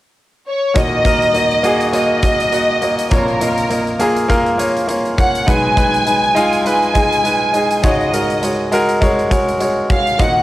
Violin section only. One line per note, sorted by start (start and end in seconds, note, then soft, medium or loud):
0.48 0.75 C#5 medium
0.78 1.94 D#5 medium
1.95 3.08 D#5 medium
3.13 4.01 A#4 medium
5.19 5.46 F#5 medium
5.49 6.66 G#5 medium
6.68 7.81 G#5 medium
7.86 8.69 D#5 medium
9.92 10.19 F5 medium
10.20 10.43 F#5 medium